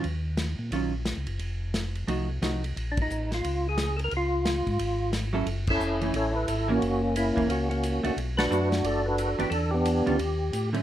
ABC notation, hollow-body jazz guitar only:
X:1
M:4/4
L:1/8
Q:"Swing" 1/4=177
K:Db
V:1 name="Hollow-body jazz guitar"
z4 [E,G,DF] z3 | z4 [F,=A,EG] z [F,A,EG] z | z8 | z6 z [G,D=E=A] |
[K:F#m] z3 [E,A,C] z3 [E,^A,C] | z3 [E,^A,C] z3 [=A,DF] | z2 [A,DF]3 z2 [E,B,D=G] | z3 [^D,=G,C^E] z3 [=D,F,A,C] |]